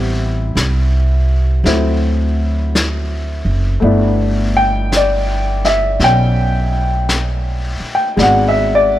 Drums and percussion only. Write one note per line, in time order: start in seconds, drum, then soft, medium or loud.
0.57 brush sweep soft
0.57 snare soft
0.57 hi-hat pedal medium
1.65 brush sweep soft
1.65 snare soft
2.75 brush sweep soft
2.75 snare medium
2.75 hi-hat pedal medium
3.83 brush sweep soft
4.92 brush sweep soft
4.92 snare soft
4.92 hi-hat pedal soft
5.64 snare soft
6.00 brush sweep soft
6.00 snare soft
7.09 brush sweep soft
7.09 snare medium
7.09 hi-hat pedal medium
8.19 brush sweep soft
8.19 snare soft